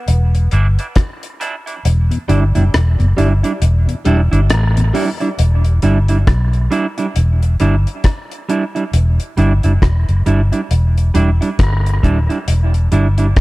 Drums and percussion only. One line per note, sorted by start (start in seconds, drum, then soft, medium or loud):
0.08 closed hi-hat medium
0.35 closed hi-hat medium
0.51 closed hi-hat medium
0.79 closed hi-hat medium
0.96 kick loud
0.96 cross-stick loud
0.96 closed hi-hat medium
1.23 closed hi-hat medium
1.41 closed hi-hat medium
1.67 closed hi-hat soft
1.85 closed hi-hat loud
2.11 closed hi-hat medium
2.29 closed hi-hat medium
2.55 closed hi-hat medium
2.74 cross-stick loud
2.74 closed hi-hat medium
3.00 closed hi-hat soft
3.18 closed hi-hat medium
3.44 closed hi-hat medium
3.62 closed hi-hat medium
3.89 closed hi-hat medium
4.05 closed hi-hat medium
4.33 closed hi-hat soft
4.50 cross-stick loud
4.50 closed hi-hat medium
4.77 closed hi-hat medium
4.95 open hi-hat medium
5.21 closed hi-hat soft
5.39 closed hi-hat medium
5.64 closed hi-hat medium
5.82 closed hi-hat medium
6.08 closed hi-hat medium
6.27 kick loud
6.27 cross-stick loud
6.27 closed hi-hat medium
6.53 closed hi-hat soft
6.72 closed hi-hat medium
6.98 closed hi-hat medium
7.16 closed hi-hat medium
7.43 closed hi-hat medium
7.60 closed hi-hat medium
7.87 closed hi-hat soft
8.04 kick loud
8.04 cross-stick loud
8.04 closed hi-hat medium
8.31 closed hi-hat medium
8.49 closed hi-hat medium
8.76 closed hi-hat soft
8.93 closed hi-hat loud
9.20 closed hi-hat medium
9.38 closed hi-hat medium
9.63 closed hi-hat soft
9.82 kick medium
9.82 cross-stick loud
9.82 closed hi-hat medium
10.09 closed hi-hat soft
10.26 closed hi-hat medium
10.53 closed hi-hat medium
10.71 closed hi-hat medium
10.98 closed hi-hat soft
11.15 closed hi-hat medium
11.42 closed hi-hat medium
11.59 kick loud
11.59 cross-stick loud
11.59 closed hi-hat medium
11.86 closed hi-hat medium
12.03 kick medium
12.03 closed hi-hat medium
12.30 closed hi-hat soft
12.48 closed hi-hat loud
12.74 closed hi-hat medium
12.92 closed hi-hat medium
13.18 closed hi-hat soft
13.36 kick loud
13.36 cross-stick loud
13.36 closed hi-hat medium